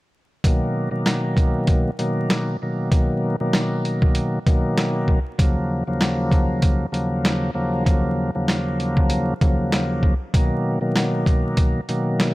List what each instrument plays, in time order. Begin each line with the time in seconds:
0.44 tonewheel organ B2 D#3 F#3 A#3, kick, closed hi-hat
0.91 tonewheel organ B2 D#3 F#3 A#3
1.06 snare, closed hi-hat
1.37 kick, closed hi-hat
1.67 kick, closed hi-hat
1.99 tonewheel organ B2 D#3 F#3 A#3, closed hi-hat
2.30 snare, closed hi-hat
2.62 tonewheel organ B2 D#3 F#3 A#3
2.91 tonewheel organ B2 D#3 F#3 A#3, kick, closed hi-hat
3.40 tonewheel organ B2 D#3 F#3 A#3
3.53 snare, closed hi-hat
3.85 closed hi-hat
4.02 kick
4.15 closed hi-hat
4.46 tonewheel organ B2 D#3 F#3 A#3, kick, closed hi-hat
4.78 snare, closed hi-hat
5.08 kick
5.38 tonewheel organ D#2 C#3 F3 F#3 A#3, kick, closed hi-hat
5.87 tonewheel organ D#2 C#3 F3 F#3 A#3
6.01 snare, closed hi-hat
6.31 kick, closed hi-hat
6.62 kick, closed hi-hat
6.92 tonewheel organ D#2 C#3 F3 F#3 A#3, closed hi-hat
7.25 snare, closed hi-hat
7.54 tonewheel organ D#2 C#3 F3 F#3 A#3
7.85 tonewheel organ D#2 C#3 F3 F#3 A#3, kick, closed hi-hat
8.35 tonewheel organ D#2 C#3 F3 F#3 A#3
8.48 snare, closed hi-hat
8.80 closed hi-hat
8.97 kick
9.10 closed hi-hat
9.41 tonewheel organ D#2 C#3 F3 F#3 A#3, kick, closed hi-hat
9.72 snare, closed hi-hat
10.03 kick
10.34 tonewheel organ B2 D#3 F#3 A#3, kick, closed hi-hat
10.81 tonewheel organ B2 D#3 F#3 A#3
10.96 snare, closed hi-hat
11.26 kick, closed hi-hat
11.57 kick, closed hi-hat
11.88 tonewheel organ B2 D#3 F#3 A#3, closed hi-hat
12.20 snare, closed hi-hat